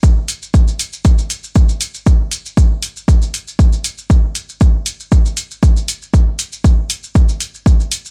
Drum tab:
HH |--o---o-o-o---o-|--o---o---o---o-|--o---o---o---o-|--o---o---o---o-|
SH |x-xxxxxxxxxxxxxx|x-xxx-xxxxxxxxxx|x-xxx-xxxxxxxxxx|x-xxx-xxxxxxxxxx|
BD |o---o---o---o---|o---o---o---o---|o---o---o---o---|o---o---o---o---|